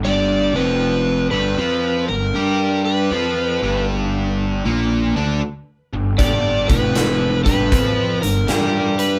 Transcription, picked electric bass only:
X:1
M:4/4
L:1/8
Q:"Swing" 1/4=78
K:Gmix
V:1 name="Picked electric bass" clef=bass
G,,, F,,,2 G,,, F,, G,,, G,,2 | F,, G,,,3 _B,,, D,, z G,,, | G,,, F,,,2 G,,, F,, G,,, G,,2 |]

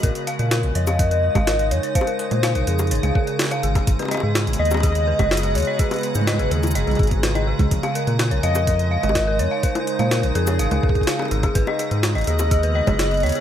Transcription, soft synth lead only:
X:1
M:4/4
L:1/8
Q:1/4=125
K:Bbphr
V:1 name="Soft synth lead"
z3 e4 d | =c3 A4 z | z3 e4 d | c3 A4 z |
z3 e4 d | =c3 A4 z | z3 e4 d |]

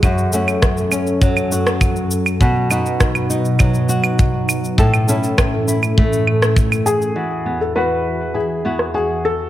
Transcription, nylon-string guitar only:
X:1
M:4/4
L:1/8
Q:1/4=101
K:E
V:1 name="Nylon-string guitar"
[F,,F] [A,CF]2 C F, F3 | [B,,F] [B,DF]2 D F, F3 | [A,,A] [CEA]2 E A,4 | [E,F] B, [B,EF]2 E [B,EF] F2 |]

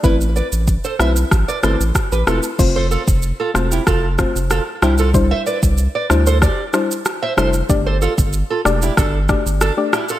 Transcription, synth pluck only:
X:1
M:4/4
L:1/16
Q:1/4=94
K:C
V:1 name="Synth pluck"
[A,CEB]6 [A,CEB]2 z2 [A,CEB] z3 [A,CEB] z | [A,CFc]6 [A,CFc]2 z2 [A,CFc] z3 [G,DEc] z | [G,DEc]6 [G,DEc]2 z2 [G,DEc] z3 [G,DEc] z | [A,DGd]6 [A,DGd]2 z2 [A,DGd] z2 [A,DGd] z2 |]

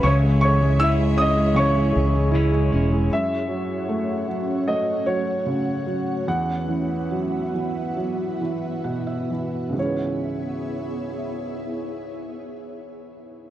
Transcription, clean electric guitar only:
X:1
M:4/4
L:1/8
Q:1/4=73
K:C#m
V:1 name="Clean electric guitar" clef=bass
[C,E,G,CE]2 [C,E,G,CE] [G,CE] [E,G,CE]2 [C,E,G,CE] [G,CE] | z8 | z8 | z8 |]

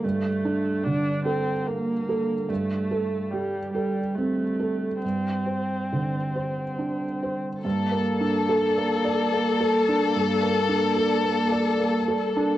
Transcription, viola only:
X:1
M:3/4
L:1/16
Q:1/4=72
K:Gm
V:1 name="Viola"
A,4 D2 C2 B,4 | A,4 G,2 G,2 A,4 | C8- C3 z | B,12- |
B,12 |]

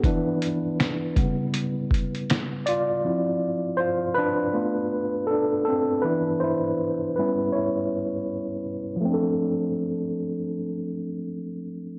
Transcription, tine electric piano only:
X:1
M:4/4
L:1/8
Q:"Swing 16ths" 1/4=80
K:Ddor
V:1 name="Tine electric piano"
[EB]6 z [Fd]- | [Fd]2 [Fc] [DB]3 [DA] [CA] | [EB] [Ec]2 [EB] [E^c]3 z | [F,A,CDA]8 |]
V:2 name="Tine electric piano"
[E,B,D]3 [^C,G,B,]4- [C,G,B,] | [F,CE]4 [A,B,F] z3 | [E,B,D] z2 [G,B,^C] z4 | z8 |]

